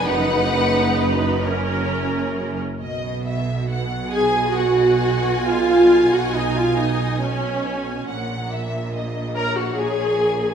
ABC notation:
X:1
M:6/8
L:1/16
Q:3/8=46
K:B
V:1 name="Violin section"
f6 z6 | z6 g2 f4 | ^e3 f d e d2 c4 | z6 a f g4 |]
V:2 name="Violin section"
B6 z6 | d2 e2 f2 g6- | g12 | f2 e2 d2 c6 |]
V:3 name="Viola section"
[DB]6 [CA]6 | z6 G2 F4 | ^E3 F D E D2 C4 | z6 A F G4 |]
V:4 name="Cello section" clef=bass
F,,12 | B,,12- | B,,12 | A,,12 |]
V:5 name="Double bass section" clef=bass
F,,,12 | B,,,12- | B,,,12 | A,,,12 |]